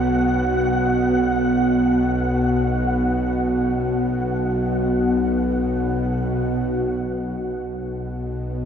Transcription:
Already playing: B1 B2 B3 F#4 C#5 F#5
7.01 B1 B2 B3
7.88 F#4 C#5

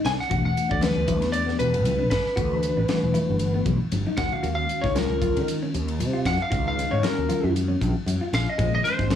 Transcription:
Already playing: D#4
0.04 C2 G#5, snare, hi-hat pedal, ride
0.19 F#5, muted fretless electric bass stroke, snare
0.29 E1 E3 A3 D4 F#4, kick, hi-hat pedal, ride, muted conga
0.45 F#5
0.57 hi-hat pedal, ride, muted conga
0.69 D2 D4 D5, kick
0.81 E3 A3 D4 G4 B4, snare, hi-hat pedal, ride, high conga
0.96 D2
1.08 E4, kick, hi-hat pedal, ride, high conga
1.21 E2, snare, ride
1.32 D5, hi-hat pedal, ride, muted conga
1.46 B3, snare
1.59 E1 B4, hi-hat pedal, ride
1.74 ride
1.85 C#2, hi-hat pedal, ride, muted conga, high conga
1.99 D4
2.10 G1 B4, kick, snare, hi-hat pedal, ride
2.26 muted fretless electric bass stroke, snare
2.36 D2 E3 A3 D4 F#4, kick, hi-hat pedal, ride, muted conga
2.63 hi-hat pedal, ride, muted conga
2.77 A1 D4
2.88 E3 A3 D4 F#4, snare, hi-hat pedal, ride, high conga
3.03 E1
3.14 E4, hi-hat pedal, ride, high conga
3.29 G1
3.39 hi-hat pedal, ride, muted conga
3.54 B3
3.65 B1, kick, hi-hat pedal, ride, high conga
3.92 G1, hi-hat pedal, ride, muted conga, high conga
4.06 D#4, high conga
4.16 D#2 D#3 G#3 C#4 F#4 F#5, kick, snare, hi-hat pedal, ride, low conga
4.32 F5, muted fretless electric bass stroke, low conga
4.43 D#2 F#4, hi-hat pedal, ride, muted conga
4.55 F5
4.69 hi-hat pedal, ride
4.82 C#2 D#4 C#5, kick, snare
4.95 D#3 G#3 C#4 F4 A#4, snare, hi-hat pedal, ride, high conga
5.10 C#2
5.22 F4, kick, hi-hat pedal, ride, high conga
5.36 D#3, ride
5.48 hi-hat pedal, ride, muted conga
5.63 C#4
5.74 D#2, hi-hat pedal, ride
5.88 ride
5.99 C3, hi-hat pedal, ride, muted conga, high conga
6.13 F4
6.25 F#2 F#5, kick, snare, hi-hat pedal, ride
6.40 F5, muted fretless electric bass stroke
6.50 C#2 D#3 G#3 C#4 D#4 F#4, kick, hi-hat pedal, ride, muted conga
6.68 F5
6.77 snare, hi-hat pedal, ride, muted conga
6.91 G#2 D#4 C#5
7.02 D#3 G#3 C#4 F#4 A#4, muted fretless electric bass stroke, snare, hi-hat pedal, ride, high conga
7.18 D#2
7.29 F4, hi-hat pedal, ride, high conga
7.43 F#2
7.56 hi-hat pedal, ride, muted conga
7.68 C#4
7.81 A#1, kick, hi-hat pedal, ride, high conga
8.06 F#2, hi-hat pedal, ride, muted conga, high conga
8.21 F4
8.32 A#1 F5, snare, hi-hat pedal, ride
8.47 D#5, muted fretless electric bass stroke
8.58 A#1 D#3 G#3 C#4 F4 G#4, kick, hi-hat pedal, ride, muted conga
8.75 D#5
8.84 C5, snare, hi-hat pedal, ride, muted conga
8.99 G#1 D#4, kick, snare
9.10 D#3 G#3 C#4 F4, snare, hi-hat pedal, ride, high conga

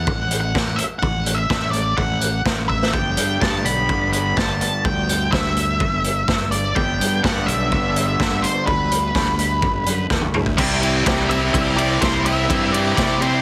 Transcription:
Already playing: F#5
0.07 A1, kick
0.31 closed hi-hat
0.41 F#5
0.55 A1, kick, snare
0.76 E5, closed hi-hat
0.99 A1 F#5, kick
1.26 closed hi-hat
1.34 E5
1.50 A1, kick, snare
1.71 D5, closed hi-hat
1.97 A1 F#5, kick
2.21 closed hi-hat
2.45 A1, kick, snare
2.69 E5, kick
2.83 snare
2.92 G1 G2 D3 G3 B3 D4 G4 G5, kick
3.16 G2, closed hi-hat
3.41 G2 A5, kick, snare
3.63 B1 B5, closed hi-hat
3.89 G1, kick
4.13 B5, closed hi-hat
4.37 G1 A5, kick, snare
4.61 closed hi-hat
4.84 D2 G5, kick
5.09 closed hi-hat
5.32 D2 E5, kick, snare
5.57 closed hi-hat
5.80 G1, kick
6.04 closed hi-hat
6.28 G1, kick, snare
6.51 D5, closed hi-hat
6.75 G1 G2 D3 G3 B3 D4 G4 G5, kick
6.99 G2, closed hi-hat
7.24 G2 F#5, kick, snare
7.46 B1 E5, closed hi-hat
7.72 G1, kick
7.96 closed hi-hat
8.07 E5
8.20 G1, kick, snare
8.42 C5, closed hi-hat
8.66 D2 B4, kick
8.92 closed hi-hat
9.14 D2, kick, snare
9.39 closed hi-hat
9.62 G1, kick
9.84 F#2, closed hi-hat
10.10 E2, kick, snare
10.21 mid tom
10.33 D2, mid tom
10.46 kick
10.57 C2 C3 G3 C4 E4 G4, kick, crash
10.81 C3 G3 C4 E4 G4, ride
11.04 C2 C3 G3 C4 E4 G4, kick, snare, ride
11.28 C3 G3 C4 E4 G4 E5, ride
11.52 C2 C3 G3 C4 E4 G4 E5, kick, ride
11.76 C3 G3 C4 E4 G4 D5, ride
12.00 C2 C3 G3 C4 E4 G4 C5, kick, snare, ride
12.24 C3 G3 C4 E4 G4 E5, ride
12.48 G2 C3 G3 C4 E4 G4, kick, ride
12.73 C3 G3 C4 E4 G4 D5, ride
12.96 C3 G3 C4 E4 G4 D5, kick, snare, ride
13.21 C3 G3 C4 E4 G4 C5, ride

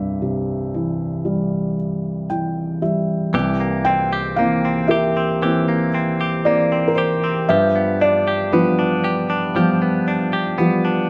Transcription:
Already playing: C2 G2 G4 E5
0.22 C3
0.74 E3
1.25 G3
2.30 E3 G5
2.82 G3 E5
3.34 C2 E3 G4
3.60 A#3
3.85 C4 G5
4.13 G4
4.36 E3 A#3 C4 F5
4.65 C4
4.88 G4 A#4 E5
5.17 C4
5.42 E3 A#3 C4 G4
5.68 A#3
5.94 C4
6.21 G4
6.45 E3 A#3 C4 D5
6.72 C4
6.88 A#4
6.95 G4 C5
7.24 C4
7.49 G2 F3 G4 B4 E5
7.75 B3
8.01 D4 D5
8.28 G4
8.52 F3 G3 B3 D4 F4 B4
8.79 D4
9.04 G4
9.30 D4
9.56 F3 G3 B3 G4
9.82 B3
10.08 D4
10.33 G4
10.58 F3 G3 B3
10.85 D4

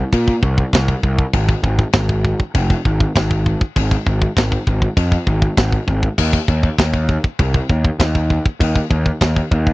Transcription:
0.13 A#2, kick, china
0.28 kick
0.42 C2, kick
0.58 kick
0.73 C2, kick, snare, china
0.88 kick
1.03 C2, kick
1.19 kick
1.33 G#1, kick, china
1.49 kick
1.63 G#1, kick
1.79 kick
1.93 G#1, kick, snare, china
2.09 kick
2.25 kick
2.40 kick
2.55 F1, kick, china
2.70 kick
2.85 G#1, kick
3.00 kick
3.15 G#1, kick, snare, china
3.31 kick
3.46 kick
3.61 kick
3.76 G#1, kick, china
3.91 kick
4.06 G#1, kick
4.22 kick
4.37 G#1, kick, snare, china
4.52 kick
4.67 G#1, kick
4.82 kick
4.97 F2, kick, china
5.12 kick
5.27 G#1, kick
5.42 kick
5.57 G#1, kick, snare, china
5.72 kick
5.88 G#1, kick
6.03 kick
6.18 D#2, kick, china, crash
6.33 kick
6.48 D#2, kick
6.63 kick
6.78 D#2, kick, snare, china
6.94 kick
7.09 kick
7.24 kick
7.39 C2, kick, china
7.54 kick
7.70 D#2, kick
7.85 kick
7.99 D#2, kick, snare, china
8.15 kick
8.30 kick
8.46 kick
8.60 D#2, kick, china
8.75 kick
8.90 D#2, kick
9.06 kick
9.21 D#2, kick, snare, china
9.36 kick
9.51 D#2, kick
9.67 kick

